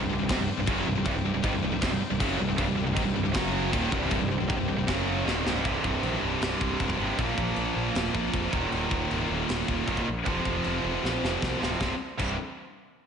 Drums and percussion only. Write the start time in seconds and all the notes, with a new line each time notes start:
0.29 kick, snare, crash
0.67 kick, crash
1.06 kick, crash
1.44 kick, crash
1.82 kick, snare, crash
2.20 kick, crash
2.58 kick, crash
2.97 kick, crash
3.34 kick, snare, crash
3.73 kick, crash
3.92 kick
4.11 kick, crash
4.50 kick, crash
4.88 kick, snare, crash
5.28 snare
5.47 snare
5.65 kick, china
5.84 kick
6.03 china
6.42 snare, china
6.61 kick
6.80 kick, china
6.90 kick
7.18 kick, china
7.38 kick
7.56 china
7.95 snare, china
8.15 kick
8.33 kick, china
8.53 kick
8.72 china
8.91 kick
9.11 china
9.49 snare, china
9.68 kick
9.88 kick, china
9.97 kick
10.26 kick, china
10.45 kick
10.64 china
11.05 snare
11.25 snare
11.42 kick, snare
11.63 snare
11.81 kick, snare
12.19 kick, crash